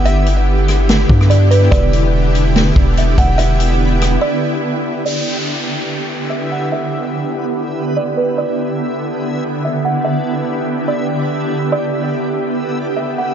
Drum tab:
HH |x-x---x-x---x-x-|x-x---x-x---x-x-|x-x---x---------|----------------|
SD |------r-o--r----|--------o-------|------r---------|----------------|
BD |----------o-----|o---------o---o-|----------------|----------------|

HH |----------------|----------------|----------------|----------------|
SD |----------------|----------------|----------------|----------------|
BD |----------------|----------------|----------------|----------------|